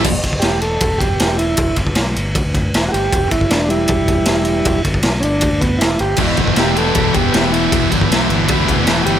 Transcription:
<<
  \new Staff \with { instrumentName = "Transistor combo organ" } { \time 4/4 \key e \minor \tempo 4 = 156 r1 | r1 | r1 | r1 |
<e' g' b'>1~ | <e' g' b'>1 | }
  \new Staff \with { instrumentName = "Transistor combo organ" } { \time 4/4 \key e \minor r4 g'8 a'4 g'4 e'8~ | e'8 r2. <fis' g'>8~ | <fis' g'>8 e'8 d'8 <g e'>2~ <g e'>8~ | <g e'>8 r4 <cis' d'>4 b8 e'8 g'8 |
r4 g'8 a'4 g'4 e'8~ | e'8 r2. <fis' g'>8 | }
  \new Staff \with { instrumentName = "Distorted electric guitar" } { \clef bass \time 4/4 \key e \minor r1 | r1 | r1 | r1 |
<e, b, e>8 <b, e>8 <e, b, e>8 <b, e>8 <e, b, e>8 <b, e>8 <e, b, e>4 | <e, b, e>8 <b, e>8 <e, b, e>8 <b, e>8 <e, b, e>8 <b, e>8 <e, b, e>4 | }
  \new Staff \with { instrumentName = "Fingered electric bass" } { \clef bass \time 4/4 \key e \minor e,,8 g,,8 e,,4 e,,4 e,,4 | e,,8 g,,8 b,,8 g,,8 d,4 e,,8 g,,8 | e,,8 g,,8 e,,4 e,,4 e,,4 | e,,8 g,,8 b,,8 g,,8 d,4 e,,8 g,,8 |
e,,8 g,,8 e,,4 e,,4 e,,4 | e,,8 g,,8 b,,8 g,,8 d,4 e,,8 g,,8 | }
  \new DrumStaff \with { instrumentName = "Drums" } \drummode { \time 4/4 <cymc bd>8 <bd cymr>16 bd16 <cymr sn>8 cymr8 <bd cymr>8 <bd cymr>8 <cymr sn>8 cymr8 | <bd cymr>8 <bd cymr>16 bd16 <cymr sn>8 cymr8 <bd cymr>8 <bd cymr>8 <cymr sn>8 cymr8 | <bd cymr>8 <bd cymr>16 bd16 <cymr sn>8 cymr8 <bd cymr>8 <bd cymr>8 <cymr sn>8 cymr8 | <bd cymr>8 <bd cymr>16 bd16 <cymr sn>8 cymr8 <bd cymr>8 <bd cymr>8 <cymr sn>8 cymr8 |
<cymc bd>8 <bd cymr>16 bd16 <cymr sn>8 cymr8 <bd cymr>8 <bd cymr>8 <cymr sn>8 cymr8 | <bd cymr>8 <bd cymr>16 bd16 <cymr sn>8 cymr8 <bd cymr>8 <bd cymr>8 <cymr sn>8 cymr8 | }
>>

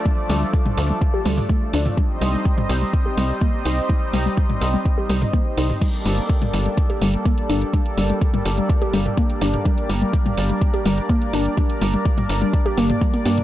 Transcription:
<<
  \new Staff \with { instrumentName = "Analog synth pad" } { \time 4/4 \key g \minor \tempo 4 = 125 << { <f a d' d''>1 | <g c' ees' ees''>1~ | <g c' ees' ees''>1 | <g bes d' d''>1~ |
<g bes d' d''>1~ | <g bes d' d''>1~ | <g bes d' d''>1 | } \\ { a'1 | c''1~ | c''1 | a'1~ |
a'1 | bes'1~ | bes'1 | } >> }
  \new Staff \with { instrumentName = "Synth arpeggio sound" } { \clef bass \time 4/4 \key g \minor g16 r16 g16 g16 r16 g16 r16 g16 r16 g'16 g16 r16 a16 r16 d'16 r16 | g16 r16 g16 g16 r16 g16 r16 g16 r16 g'16 g16 r16 bes16 r16 ees'16 r16 | g16 r16 g16 g16 r16 g16 r16 g16 r16 g'16 g16 r16 bes16 r16 ees'16 r16 | g16 r16 g16 g16 r16 g16 r16 g16 r16 g'16 g16 r16 bes16 r16 d'16 r16 |
g16 r16 g16 g16 r16 g16 r16 g16 r16 g'16 g16 r16 bes16 r16 d'16 r16 | g16 r16 g16 g16 r16 g16 r16 g16 r16 g'16 g16 r16 bes16 r16 d'16 r16 | g16 r16 g16 g16 r16 g16 r16 g16 r16 g'16 bes16 r16 g16 bes16 bes16 r16 | }
  \new Staff \with { instrumentName = "Analog synth bass" } { \clef bass \time 4/4 \key g \minor r8 d,8 r8 d,8 r8 d,8 r8 d,8 | r8 c,8 r8 c,8 r8 c,8 r8 c,8 | r8 c,8 r8 c,8 r8 c,8 r8 c,8 | r8 g,,8 r8 g,,8 r8 g,,8 r8 g,,8 |
r8 g,,8 r8 g,,8 r8 g,,8 r8 g,,8 | r8 g,,8 r8 g,,8 r8 g,,8 r8 g,,8 | r8 g,,8 r8 g,,8 r8 g,,8 r8 g,8 | }
  \new DrumStaff \with { instrumentName = "Drums" } \drummode { \time 4/4 bd8 hho8 bd16 toml16 hho8 bd8 hho16 toml16 bd8 hho16 toml16 | bd8 hho8 bd16 toml16 hho8 bd8 hho8 bd8 hho8 | bd8 hho8 bd16 toml16 hho8 bd8 hho16 toml16 bd8 hho16 toml16 | <cymc hh bd>16 hh16 hho16 hh16 <hh bd>16 <hh toml>16 hho16 hh16 <hh bd>16 hh16 hho16 hh16 <hh bd>16 hh16 hho16 hh16 |
<hh bd>16 hh16 hho16 hh16 <hh bd>16 <hh toml>16 hho16 hh16 <hh bd>16 hh16 hho16 <hh toml>16 <hh bd>16 hh16 hho16 <hh toml>16 | <hh bd>16 hh16 hho16 hh16 <hh bd>16 <hh toml>16 hho16 hh16 <hh bd>16 hh16 hho16 hh16 <hh bd>16 hh16 hho16 hh16 | <hh bd>16 hh16 hho16 hh16 <hh bd>16 <hh toml>16 hho16 hh16 <hh bd>16 hh16 hho16 <hh toml>16 <hh bd>16 hh16 hho16 <hh toml>16 | }
>>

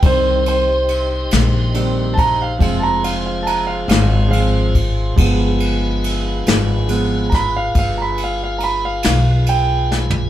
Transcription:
<<
  \new Staff \with { instrumentName = "Grand piano" } { \time 12/8 \key g \phrygian \tempo 4. = 47 c''8 c''4 r4 <a'' bes''>16 f''16 f''16 <a'' bes''>16 f''16 f''16 <a'' bes''>16 f''16 f''8 f''8 r8 | r2 r8 <bes'' b''>16 f''16 f''16 <bes'' b''>16 f''16 f''16 <bes'' b''>16 f''16 f''8 g''8 r8 | }
  \new Staff \with { instrumentName = "Grand piano" } { \clef bass \time 12/8 \key g \phrygian <ees g c'>8 r4. <ees g c'>8 r8 <f aes c'>2 <f aes c'>8 r8 | <f aes b>2 <f aes b>8 r2. r8 | }
  \new Staff \with { instrumentName = "Tonewheel organ" } { \time 12/8 \key g \phrygian <ees' g' c''>2. <f' aes' c''>2. | <f' aes' b'>1. | }
  \new Staff \with { instrumentName = "Upright bass" } { \clef bass \time 12/8 \key g \phrygian c,4. bes,,4. f,,4. aes,,4. | g,,4. aes,,4. g,,4. b,,4. | }
  \new DrumStaff \with { instrumentName = "Drums" } \drummode { \time 12/8 <bd cymr>8 cymr8 cymr8 <cymr sn>8 cymr8 <bd cymr>8 <bd cymr>8 cymr8 cymr8 <cymr sn>8 cymr8 <bd cymr>8 | <bd cymr>8 cymr8 cymr8 <cymr sn>8 cymr8 <bd cymr sn>8 <bd cymr>8 cymr8 cymr8 <cymr sn>8 cymr8 sn16 tomfh16 | }
>>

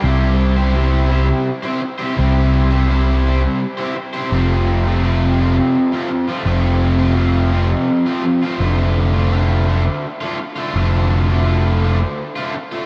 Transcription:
<<
  \new Staff \with { instrumentName = "Overdriven electric guitar" } { \time 3/4 \key d \minor \tempo 4 = 84 <c g c' e' g' c''>8. <c' e' g' c''>16 <c g c' e' g' c''>8 <c' e' g' c''>8. <c' e' g' c''>8 <c' e' g' c''>16 | <c g c' e' g' c''>8. <c' e' g' c''>16 <c g c' e' g' c''>8 <c' e' g' c''>8. <c' e' g' c''>8 <c' e' g' c''>16 | <f, c f a c' f'>8. <f a c' f'>16 <f, c f a c' f'>8 <f a c' f'>8. <f a c' f'>8 <f a c' f'>16 | <f, c f a c' f'>8. <f a c' f'>16 <f, c f a c' f'>8 <f a c' f'>8. <f a c' f'>8 <f a c' f'>16 |
<d, a, d a f'>8. <d a f'>16 <d, a, d a f'>8 <a, d a f'>8. <d a f'>8 <d a f'>16 | <d, a, d a f'>8. <d a f'>16 <d, a, d a f'>8 <a, d a f'>8. <d a f'>8 <d a f'>16 | }
  \new Staff \with { instrumentName = "Fingered electric bass" } { \clef bass \time 3/4 \key d \minor c,2 r4 | c,2 r4 | f,,2 r4 | f,,2 r4 |
f,,2 r4 | f,,2 r4 | }
>>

